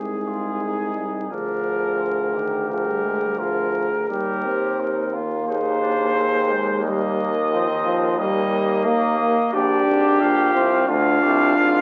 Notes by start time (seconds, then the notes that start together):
Already playing: C2 G#3 D#4 G#4
0.27 F4
0.63 D#4
0.96 G3
1.30 D2 F3 D4 G#4 A#4
2.00 F4
2.35 D#3 G4
2.69 F3 G#4 A#4
2.87 G3
3.04 G#3
3.21 G3
3.38 F3 F4 G#4 A#4
3.73 A#4
4.08 D#2 G3 G4 A#4
4.44 C4
4.80 D#4
5.13 A#3 F4
5.48 D#4 G#4 C5
5.81 D4
6.16 C4
6.50 G#3
6.83 G3 A#3 A#4 D#5
7.51 F3 C4
7.68 D#3
7.84 F3
8.18 G3 A#3 A#4 D#5
8.85 A#3 A#4 D#5
9.19 A#3
9.53 A#1 D4 G4 D5
9.87 G#1
10.20 A#1 F4 F5
10.54 C2 C4
10.88 D2 D4 F4 F5
11.23 C2 G4
11.57 G#1 F4